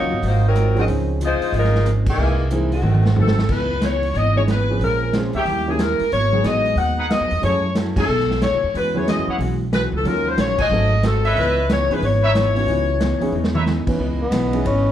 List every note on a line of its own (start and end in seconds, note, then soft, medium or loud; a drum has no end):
0.00 0.11 C#2 medium
0.00 0.12 D#3 medium
0.00 0.13 A#3 medium
0.00 0.21 A#3 medium
0.00 0.13 C#4 medium
0.00 0.21 D#4 medium
0.00 0.13 F#4 medium
0.00 0.21 F#4 medium
0.00 0.21 C#5 medium
0.11 0.22 G1 medium
0.22 0.85 G#1 medium
0.22 0.45 G#2 soft
0.22 0.46 F#3 medium
0.22 0.46 C4 medium
0.22 0.46 F4 medium
0.22 open hi-hat medium
0.27 0.45 A#3 medium
0.27 0.46 D#4 medium
0.27 0.46 F#4 medium
0.27 0.46 C5 medium
0.47 0.76 F#3 medium
0.47 0.76 C4 medium
0.47 0.76 D#4 medium
0.47 0.76 A#4 loud
0.56 0.78 G#2 medium
0.56 0.78 F#3 medium
0.56 0.79 C4 medium
0.56 0.79 F4 medium
0.56 cross-stick medium
0.56 closed hi-hat medium
0.75 1.18 F3 medium
0.75 1.18 C4 medium
0.75 0.83 C4 medium
0.75 1.18 C#4 medium
0.75 1.19 D#4 medium
0.75 0.84 F#4 medium
0.75 1.19 G#4 medium
0.75 0.83 A#4 medium
0.75 0.84 D#5 medium
0.75 open hi-hat soft
0.88 1.38 C#2 medium
0.88 1.11 C#3 soft
0.88 1.11 F3 soft
0.88 1.11 C4 soft
0.88 1.12 D#4 medium
0.88 open hi-hat medium
1.21 1.43 C#3 medium
1.21 1.43 F3 medium
1.21 1.44 C4 medium
1.21 1.44 D#4 medium
1.21 1.53 D#4 medium
1.21 closed hi-hat medium
1.25 1.53 G#3 loud
1.25 1.54 F4 medium
1.25 1.54 C5 loud
1.40 muted upright bass stroke soft
1.40 open hi-hat soft
1.52 2.02 G#1 medium
1.52 1.76 C#3 soft
1.52 1.76 F3 soft
1.52 1.76 C4 medium
1.52 1.77 D#4 medium
1.52 open hi-hat medium
1.57 1.88 G#3 medium
1.57 1.88 D#4 medium
1.57 1.88 F4 medium
1.57 1.88 A#4 loud
1.64 snare soft
1.75 snare soft
1.86 2.08 C#3 medium
1.86 2.08 F3 medium
1.86 2.08 C4 medium
1.86 2.09 D#4 medium
1.86 cross-stick medium
1.86 closed hi-hat medium
2.06 2.17 C#2 medium
2.06 2.50 E3 medium
2.06 2.49 A#3 medium
2.06 2.50 D#4 medium
2.06 2.50 G#4 medium
2.06 kick medium
2.06 crash medium
2.17 2.80 C2 medium
2.17 2.41 C3 soft
2.17 2.41 G#3 soft
2.17 2.42 A#3 soft
2.21 2.42 E4 medium
2.51 2.73 C3 medium
2.51 2.70 E3 medium
2.51 2.74 G#3 medium
2.51 2.70 A#3 medium
2.51 2.74 A#3 medium
2.51 2.70 C4 medium
2.51 2.70 D#4 medium
2.51 2.74 E4 medium
2.51 2.71 G#4 medium
2.51 closed hi-hat medium
2.72 3.14 D#3 medium
2.72 3.14 A3 medium
2.72 3.14 C4 medium
2.72 3.14 F#4 medium
2.72 open hi-hat soft
2.82 3.45 G#1 medium
2.82 3.06 G#2 soft
2.82 3.07 F#3 soft
2.82 mid tom soft
2.86 3.07 A3 soft
2.86 3.07 C4 medium
2.94 mid tom medium
3.05 snare medium
3.16 3.39 G#2 medium
3.16 3.35 F#3 medium
3.16 3.39 F#3 medium
3.16 3.35 A3 medium
3.16 3.39 A3 medium
3.16 3.35 C4 medium
3.16 3.40 C4 medium
3.16 3.36 D#4 medium
3.16 3.36 A4 medium
3.16 3.49 A4 medium
3.16 floor tom medium
3.27 snare medium
3.39 snare medium
3.49 4.11 C#2 medium
3.49 3.72 C#3 soft
3.49 3.72 E3 soft
3.49 3.72 B3 soft
3.49 3.72 D#4 soft
3.49 3.83 B4 medium
3.49 kick medium
3.49 crash medium
3.81 4.04 C#3 medium
3.81 4.04 E3 medium
3.81 4.05 B3 medium
3.81 4.05 D#4 medium
3.81 4.16 C#5 medium
3.81 snare medium
3.81 closed hi-hat medium
4.03 open hi-hat soft
4.14 4.76 G#1 medium
4.14 4.37 C#3 soft
4.14 4.38 E3 soft
4.14 4.38 B3 soft
4.14 4.36 D#5 medium
4.14 open hi-hat soft
4.18 4.38 D#4 soft
4.35 4.46 E3 medium
4.35 4.46 B3 medium
4.35 4.47 C#4 medium
4.35 4.47 D#4 medium
4.35 4.47 G#4 medium
4.35 4.42 C#5 medium
4.48 4.70 C#3 medium
4.48 4.71 E3 medium
4.48 4.71 B3 medium
4.48 4.71 D#4 medium
4.48 4.79 B4 medium
4.48 snare medium
4.48 closed hi-hat soft
4.69 5.11 F3 medium
4.69 5.11 A#3 medium
4.69 5.11 C4 medium
4.69 5.12 C#4 soft
4.69 5.12 G#4 medium
4.79 5.29 A#1 medium
4.79 5.03 A#2 soft
4.79 5.03 G#3 soft
4.79 5.03 C#4 soft
4.79 5.12 A#4 medium
4.79 open hi-hat soft
4.84 5.04 F4 soft
5.13 5.36 A#2 medium
5.13 5.32 F3 medium
5.13 5.36 G#3 medium
5.13 5.32 A#3 medium
5.13 5.32 C4 medium
5.13 5.32 C#4 soft
5.13 5.36 C#4 medium
5.13 5.36 F4 medium
5.13 5.33 G#4 medium
5.13 snare medium
5.13 closed hi-hat medium
5.33 5.45 D2 medium
5.33 5.42 D#4 medium
5.33 5.42 G4 medium
5.33 5.66 G4 loud
5.33 5.42 C#5 medium
5.33 5.42 E5 medium
5.33 open hi-hat soft
5.45 5.95 D#2 medium
5.45 5.68 D#3 soft
5.45 5.69 G3 soft
5.45 5.69 C#4 soft
5.45 5.69 E4 medium
5.45 open hi-hat soft
5.67 5.78 E3 medium
5.67 5.78 A#3 medium
5.67 5.78 C#4 medium
5.67 5.78 D#4 medium
5.67 5.78 G4 medium
5.67 5.80 G#4 medium
5.79 6.01 D#3 medium
5.79 6.01 G3 medium
5.79 6.02 C#4 medium
5.79 6.02 E4 medium
5.79 6.12 A#4 medium
5.79 snare medium
5.79 closed hi-hat medium
5.99 muted upright bass stroke soft
5.99 open hi-hat soft
6.12 6.42 G#1 medium
6.12 6.34 G#2 soft
6.12 6.34 F#3 soft
6.12 6.35 B3 soft
6.12 6.35 D#4 soft
6.12 6.43 C#5 loud
6.12 open hi-hat soft
6.32 6.74 F#3 medium
6.32 6.75 G#3 medium
6.32 6.75 B3 medium
6.32 6.75 D#4 medium
6.32 6.75 G#4 medium
6.44 6.74 A1 medium
6.44 6.67 G#2 medium
6.44 6.67 F#3 medium
6.44 6.67 B3 medium
6.44 6.67 D#4 medium
6.44 6.77 D#5 loud
6.44 snare medium
6.44 closed hi-hat medium
6.65 open hi-hat soft
6.76 7.17 D#2 medium
6.76 6.99 G#2 soft
6.76 7.00 F#3 soft
6.76 7.00 B3 soft
6.76 7.08 F#5 loud
6.76 open hi-hat soft
6.80 7.00 D#4 medium
6.97 7.06 D#4 medium
6.97 7.06 G#4 medium
6.97 7.06 B4 medium
6.97 7.06 F#5 medium
7.11 7.32 G#2 medium
7.11 7.32 F#3 medium
7.11 7.33 B3 medium
7.11 7.33 D#4 medium
7.11 7.43 D#5 loud
7.11 snare medium
7.11 closed hi-hat medium
7.20 7.30 F#2 medium
7.31 7.41 E2 medium
7.31 open hi-hat soft
7.42 8.05 F#2 medium
7.42 7.61 F#3 soft
7.42 7.65 F#3 soft
7.42 7.61 A3 soft
7.42 7.61 C#4 soft
7.42 7.65 C#4 soft
7.42 7.61 E4 soft
7.42 7.65 E4 soft
7.42 7.62 G#4 medium
7.42 7.66 A4 medium
7.42 7.74 C#5 medium
7.42 open hi-hat soft
7.75 7.97 F#3 medium
7.75 7.98 C#4 medium
7.75 7.98 E4 medium
7.75 7.98 A4 medium
7.75 snare medium
7.75 closed hi-hat medium
7.96 8.07 F#3 medium
7.96 8.07 A3 medium
7.96 8.07 C#4 medium
7.96 8.04 D#4 medium
7.96 8.07 D#4 medium
7.96 8.08 G#4 medium
7.96 8.04 A4 medium
7.96 8.39 A4 loud
7.96 8.04 C#5 medium
7.96 8.04 G#5 medium
7.96 kick medium
7.96 crash medium
8.07 8.48 B1 medium
8.07 8.30 B2 soft
8.07 8.31 A3 soft
8.07 8.31 D#4 soft
8.07 8.31 G#4 soft
8.20 snare soft
8.31 snare soft
8.41 8.63 B2 medium
8.41 8.63 A3 medium
8.41 8.64 D#4 medium
8.41 8.64 G#4 medium
8.41 8.72 C#5 medium
8.41 snare medium
8.41 closed hi-hat medium
8.51 8.61 C#2 medium
8.63 8.73 D#2 medium
8.74 9.15 E2 medium
8.74 8.96 E3 soft
8.74 8.96 G#3 soft
8.74 8.97 C#4 medium
8.74 8.97 F#4 soft
8.74 8.94 B4 medium
8.74 open hi-hat soft
8.95 9.37 F#3 medium
8.95 9.37 B3 medium
8.95 9.37 C#4 medium
8.95 9.37 E4 medium
8.95 9.38 G#4 medium
8.95 9.08 C#5 medium
9.07 9.29 E3 medium
9.07 9.29 G#3 medium
9.07 9.30 C#4 medium
9.07 9.30 F#4 medium
9.07 9.27 D#5 medium
9.07 snare medium
9.07 closed hi-hat medium
9.17 9.27 F#2 medium
9.28 9.38 D#2 medium
9.28 9.36 E4 medium
9.28 9.36 G#4 medium
9.28 9.36 C#5 medium
9.28 9.36 F#5 medium
9.39 9.89 B1 medium
9.39 9.62 E3 medium
9.39 9.62 G#3 medium
9.39 9.62 C#4 medium
9.39 9.63 F#4 medium
9.39 open hi-hat soft
9.72 9.94 E3 medium
9.72 9.95 G#3 medium
9.72 9.95 C#4 medium
9.72 9.95 F#4 medium
9.72 9.82 B4 medium
9.72 snare medium
9.72 closed hi-hat medium
9.92 10.03 C#2 medium
9.92 10.05 A4 medium
10.04 10.35 D#2 medium
10.04 10.27 D#3 soft
10.04 10.55 F#3 medium
10.04 10.28 F#3 soft
10.04 10.55 A#3 medium
10.04 10.55 C#4 medium
10.04 10.28 C#4 soft
10.04 10.55 D#4 medium
10.04 10.28 F4 soft
10.04 10.56 F4 medium
10.04 10.26 A#4 loud
10.04 open hi-hat soft
10.28 10.39 C5 medium
10.38 10.68 A#1 medium
10.38 10.60 D#3 medium
10.38 10.60 F#3 medium
10.38 10.60 C#4 medium
10.38 10.61 F4 medium
10.38 10.58 C#5 loud
10.38 snare medium
10.38 closed hi-hat medium
10.58 10.67 F#4 medium
10.58 10.67 A4 medium
10.58 10.67 C5 medium
10.58 11.05 D#5 loud
10.58 10.67 G#5 medium
10.58 kick medium
10.58 crash medium
10.70 11.33 G#1 medium
10.70 10.90 F#3 medium
10.70 10.93 G#3 soft
10.70 10.90 A3 medium
10.70 10.93 C4 soft
10.70 10.90 C4 medium
10.70 10.90 D#4 medium
10.70 10.93 F#4 medium
10.70 10.94 A4 soft
10.70 10.91 A4 medium
11.03 11.26 G#3 medium
11.03 11.26 C4 medium
11.03 11.26 F#4 medium
11.03 11.26 A4 medium
11.03 11.36 A4 medium
11.03 snare medium
11.03 closed hi-hat medium
11.24 11.67 B4 medium
11.24 11.66 C#5 medium
11.24 11.67 D#5 medium
11.24 11.66 E5 loud
11.24 open hi-hat soft
11.35 11.86 C#2 medium
11.35 11.58 C#3 soft
11.35 11.59 E3 soft
11.35 11.59 B3 medium
11.35 11.59 D#4 soft
11.35 11.68 B4 loud
11.35 open hi-hat soft
11.69 11.91 C#3 medium
11.69 11.91 E3 medium
11.69 11.92 B3 medium
11.69 11.92 D#4 medium
11.69 11.92 C#5 loud
11.69 snare medium
11.69 closed hi-hat medium
11.89 12.00 D2 medium
11.89 12.01 E3 medium
11.89 12.01 B3 medium
11.89 12.01 C#4 medium
11.89 12.02 D#4 medium
11.89 12.02 G#4 medium
11.89 12.03 B4 medium
11.89 open hi-hat soft
12.01 12.64 G#1 medium
12.01 12.24 C#3 soft
12.01 12.25 E3 soft
12.01 12.25 B3 medium
12.01 12.25 D#4 soft
12.01 open hi-hat soft
12.05 13.64 C#5 medium
12.23 12.31 D#4 medium
12.23 12.31 B4 medium
12.23 12.31 C#5 medium
12.23 12.31 E5 loud
12.35 12.57 C#3 medium
12.35 12.57 E3 medium
12.35 12.57 B3 medium
12.35 12.58 D#4 medium
12.35 snare medium
12.35 closed hi-hat medium
12.55 12.98 E3 medium
12.55 12.98 B3 medium
12.55 12.98 C#4 medium
12.55 12.99 D#4 medium
12.55 12.99 F#4 medium
12.55 open hi-hat soft
12.66 13.17 C#2 medium
12.66 12.90 C#3 medium
12.66 12.90 E3 soft
12.66 12.91 B3 medium
12.66 12.91 D#4 medium
12.66 open hi-hat soft
13.00 13.23 C#3 medium
13.00 13.23 E3 medium
13.00 13.23 B3 medium
13.00 13.23 D#4 medium
13.00 snare medium
13.00 closed hi-hat medium
13.20 13.32 E3 medium
13.20 13.32 B3 medium
13.20 13.32 C#4 medium
13.20 13.32 D#4 medium
13.20 13.33 G#4 medium
13.20 muted upright bass stroke soft
13.20 open hi-hat soft
13.32 13.83 E2 medium
13.32 13.56 C#3 medium
13.32 13.56 E3 soft
13.32 13.57 B3 medium
13.36 13.57 D#4 medium
13.44 snare medium
13.55 13.63 D#4 medium
13.55 13.63 B4 medium
13.55 13.63 C#5 medium
13.55 13.63 E5 medium
13.55 mid tom medium
13.66 13.89 C#3 medium
13.66 13.89 E3 medium
13.66 13.89 B3 medium
13.66 13.90 D#4 medium
13.66 snare medium
13.87 13.99 E3 medium
13.87 13.99 B3 medium
13.87 14.00 C#4 medium
13.87 14.00 D#4 medium
13.87 14.00 B4 medium
13.87 muted upright bass stroke soft
13.87 kick medium
13.87 crash medium
13.99 14.31 C#2 medium
13.99 14.21 C#3 soft
13.99 14.92 C#3 medium
13.99 14.22 E3 soft
13.99 14.22 B3 soft
13.99 14.22 D#4 soft
13.99 14.92 E4 medium
13.99 14.92 B4 medium
13.99 14.92 D#5 medium
14.22 14.68 B3 medium
14.31 14.64 B1 medium
14.31 14.55 C#3 medium
14.31 14.55 E3 medium
14.31 14.55 B3 medium
14.31 14.55 D#4 medium
14.31 snare medium
14.31 hi-hat pedal medium
14.31 ride medium
14.53 14.64 E3 medium
14.53 14.64 B3 medium
14.53 14.64 C#4 medium
14.53 14.64 D#4 medium
14.53 14.65 G#4 medium
14.53 ride soft
14.64 14.92 G#1 medium
14.64 14.87 C#3 soft
14.64 14.88 E3 soft
14.64 14.88 B3 medium
14.64 14.92 C#4 medium
14.64 14.88 D#4 soft
14.64 ride medium